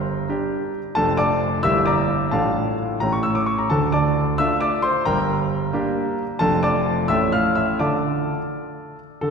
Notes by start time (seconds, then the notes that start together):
Already playing: G1 G2 A#4 G5 A#5
0.29 D4 G4
0.95 F1 F2 A3 D4 A4 A5
1.17 D5 A5 D6
1.63 G1 G2 A#3 E4 G4 E5 E6
1.86 D5 A#5 D6
2.31 A1 A2 A3 D4 F4 A4 F5 A5
3.00 A1 A2 A3 C#4 E4 A#5
3.13 C#6
3.23 E6
3.35 D6
3.46 C#6
3.58 A#5
3.70 D2 D3 A4 A5
3.92 D5 A5 D6
4.38 A3 D4 F4 E5 E6
4.61 D5 D6
4.82 C5 C6
5.05 G1 G2 A#4 G5 A#5
5.73 A#3 D4 G4
6.39 F1 F2 A3 D4 A4 A5
6.63 D5 A5 D6
7.08 A1 A2 A3 C#4 A4 E5 E6
7.32 F5 F6
7.55 E5 E6
7.79 D3 F4 A4 D5 A5 D6
9.21 D3 A4